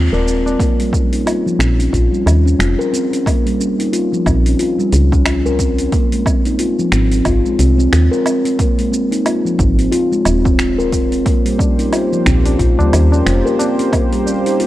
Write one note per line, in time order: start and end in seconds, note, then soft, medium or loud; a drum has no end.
0.00 0.55 A#3 medium
0.00 0.11 F4 medium
0.00 0.55 F4 medium
0.00 0.55 G#4 medium
0.00 0.55 C5 medium
0.12 0.56 D#1 medium
0.12 0.25 A#4 loud
0.12 tabla na medium
0.12 shaker soft
0.26 0.44 C4 medium
0.26 shaker medium
0.46 0.59 C4 medium
0.46 tabla na medium
0.46 shaker soft
0.59 0.77 A#3 loud
0.59 kick loud
0.59 open hi-hat medium
0.59 shaker soft
0.79 0.91 G3 medium
0.79 open hi-hat soft
0.79 shaker soft
0.93 1.10 C#4 medium
0.93 kick loud
0.93 shaker medium
1.12 1.25 D#4 medium
1.12 open hi-hat soft
1.12 shaker soft
1.26 1.45 F4 medium
1.26 open hi-hat medium
1.26 low woodblock medium
1.26 shaker soft
1.46 1.59 F3 medium
1.46 shaker soft
1.59 1.88 A#1 loud
1.59 1.77 C4 medium
1.59 finger snap medium
1.59 open hi-hat soft
1.59 shaker medium
1.79 1.92 C#4 medium
1.79 open hi-hat soft
1.79 shaker soft
1.93 2.09 A#1 medium
1.93 2.10 F4 loud
1.93 kick medium
1.93 open hi-hat medium
1.93 shaker soft
2.12 2.25 G3 medium
2.12 shaker soft
2.26 2.55 D#2 medium
2.26 2.44 C#4 medium
2.26 open hi-hat medium
2.26 low woodblock medium
2.26 shaker medium
2.46 2.59 C#4 loud
2.46 shaker soft
2.59 2.76 F1 loud
2.59 2.78 F4 medium
2.59 finger snap medium
2.59 open hi-hat medium
2.59 shaker soft
2.79 2.91 A#4 loud
2.79 shaker soft
2.93 3.10 C4 medium
2.93 open hi-hat soft
2.93 shaker medium
3.13 3.26 C#4 medium
3.13 open hi-hat soft
3.13 shaker soft
3.26 3.44 A#3 loud
3.26 kick loud
3.26 open hi-hat medium
3.26 low woodblock medium
3.26 shaker soft
3.46 3.58 G3 medium
3.46 open hi-hat soft
3.46 shaker soft
3.60 3.77 C#4 medium
3.60 shaker medium
3.79 3.91 D#4 medium
3.79 open hi-hat soft
3.79 shaker soft
3.93 4.11 F4 medium
3.93 open hi-hat medium
3.93 shaker soft
4.12 4.25 F3 medium
4.12 shaker soft
4.26 4.55 A#1 loud
4.26 4.44 C4 medium
4.26 kick loud
4.26 open hi-hat soft
4.26 low woodblock medium
4.26 shaker medium
4.46 4.59 C#4 medium
4.46 open hi-hat soft
4.46 shaker soft
4.59 4.77 F4 medium
4.59 open hi-hat medium
4.59 shaker soft
4.79 4.91 G3 medium
4.79 shaker soft
4.92 5.89 C#2 loud
4.92 5.10 C#4 medium
4.92 open hi-hat medium
4.92 shaker medium
5.12 5.25 C#4 loud
5.12 kick loud
5.12 shaker soft
5.26 5.45 F4 medium
5.26 finger snap medium
5.26 open hi-hat medium
5.26 low woodblock medium
5.26 shaker soft
5.46 5.58 A#4 loud
5.46 shaker soft
5.59 5.77 C4 medium
5.59 kick medium
5.59 open hi-hat soft
5.59 shaker medium
5.79 5.92 C#4 medium
5.79 open hi-hat soft
5.79 shaker soft
5.92 6.10 A#3 loud
5.92 kick loud
5.92 open hi-hat medium
5.92 shaker soft
6.12 6.25 G#3 medium
6.12 open hi-hat soft
6.12 shaker soft
6.26 6.44 C4 medium
6.26 kick loud
6.26 low woodblock medium
6.26 shaker medium
6.45 6.58 D#4 medium
6.45 open hi-hat soft
6.45 shaker soft
6.59 6.78 F4 medium
6.59 open hi-hat medium
6.59 shaker soft
6.79 6.92 F3 medium
6.79 shaker soft
6.92 7.21 G#1 loud
6.92 7.10 C4 medium
6.92 finger snap medium
6.92 open hi-hat soft
6.92 shaker medium
7.12 7.25 C4 medium
7.12 open hi-hat soft
7.12 shaker soft
7.25 7.43 G#1 medium
7.25 7.44 F4 loud
7.25 kick medium
7.25 open hi-hat medium
7.25 low woodblock medium
7.25 shaker soft
7.45 7.58 G#3 medium
7.45 shaker soft
7.59 7.88 C2 medium
7.59 7.77 C4 medium
7.59 open hi-hat medium
7.59 shaker medium
7.78 7.92 C4 loud
7.78 shaker soft
7.92 8.09 D#2 medium
7.92 8.11 F4 medium
7.92 finger snap medium
7.92 open hi-hat medium
7.92 shaker soft
8.11 8.24 A#4 loud
8.11 shaker soft
8.25 8.43 C4 medium
8.25 open hi-hat soft
8.25 low woodblock medium
8.25 shaker medium
8.45 8.58 C4 medium
8.45 open hi-hat soft
8.45 shaker soft
8.59 8.77 A#3 loud
8.59 kick loud
8.59 open hi-hat medium
8.59 shaker soft
8.78 8.91 G#3 medium
8.78 open hi-hat soft
8.78 shaker soft
8.92 9.10 C4 medium
8.92 shaker medium
9.12 9.24 D#4 medium
9.12 open hi-hat soft
9.12 shaker soft
9.25 9.44 F4 medium
9.25 open hi-hat medium
9.25 low woodblock medium
9.25 shaker soft
9.45 9.58 F3 medium
9.45 shaker soft
9.58 9.88 G#1 loud
9.58 9.77 C4 medium
9.58 kick loud
9.58 open hi-hat soft
9.58 shaker medium
9.78 9.92 C4 medium
9.78 open hi-hat soft
9.78 shaker soft
9.92 10.10 F4 loud
9.92 open hi-hat medium
9.92 shaker soft
10.12 10.25 G#3 medium
10.12 shaker soft
10.25 11.22 D#1 medium
10.25 10.43 C4 medium
10.25 open hi-hat soft
10.25 low woodblock medium
10.25 shaker medium
10.45 10.58 C4 loud
10.45 kick loud
10.45 shaker soft
10.59 10.78 F4 medium
10.59 finger snap medium
10.59 open hi-hat soft
10.59 shaker soft
10.78 10.91 A#4 medium
10.78 shaker soft
10.92 11.10 C4 medium
10.92 kick medium
10.92 open hi-hat soft
10.92 shaker medium
11.12 11.25 C4 medium
11.12 open hi-hat soft
11.12 shaker soft
11.25 14.67 A#3 medium
11.25 11.43 A#3 loud
11.25 14.67 G4 medium
11.25 14.67 C5 medium
11.25 kick loud
11.25 open hi-hat medium
11.25 shaker soft
11.45 11.58 G3 medium
11.45 open hi-hat soft
11.45 shaker soft
11.59 11.77 C#4 medium
11.59 kick loud
11.59 tabla tin medium
11.59 shaker medium
11.79 11.91 D#4 medium
11.79 open hi-hat soft
11.79 shaker soft
11.92 12.11 F4 medium
11.92 open hi-hat medium
11.92 low woodblock medium
11.92 shaker soft
12.12 12.25 F3 medium
12.12 tabla tin soft
12.12 shaker soft
12.26 12.55 A#1 loud
12.26 12.44 C4 medium
12.26 finger snap medium
12.26 open hi-hat soft
12.26 tabla ge medium
12.26 shaker medium
12.45 12.59 C#4 medium
12.45 open hi-hat soft
12.45 tabla na soft
12.45 shaker soft
12.59 12.76 A#1 medium
12.59 12.77 F4 loud
12.59 kick medium
12.59 open hi-hat medium
12.59 shaker soft
12.79 12.91 G3 medium
12.79 tabla na medium
12.79 tabla ge medium
12.79 shaker soft
12.92 13.22 D#2 medium
12.92 13.10 C#4 medium
12.92 open hi-hat medium
12.92 low woodblock medium
12.92 shaker medium
13.12 13.25 C#4 loud
13.12 tabla na medium
13.12 tabla tin soft
13.12 shaker soft
13.26 13.43 F1 loud
13.26 13.45 F4 medium
13.26 finger snap medium
13.26 open hi-hat medium
13.26 shaker soft
13.46 13.58 A#4 loud
13.46 tabla tin soft
13.46 shaker soft
13.59 13.77 C4 medium
13.59 open hi-hat soft
13.59 tabla na medium
13.59 shaker medium
13.79 13.92 C#4 medium
13.79 open hi-hat soft
13.79 shaker soft
13.93 14.10 A#3 loud
13.93 kick loud
13.93 open hi-hat medium
13.93 low woodblock medium
13.93 shaker soft
14.12 14.25 G3 medium
14.12 open hi-hat soft
14.12 shaker soft
14.26 14.44 C#4 medium
14.26 tabla tin medium
14.26 shaker medium
14.46 14.58 D#4 medium
14.46 open hi-hat soft
14.46 shaker soft
14.60 14.67 F4 medium
14.60 open hi-hat medium
14.60 shaker soft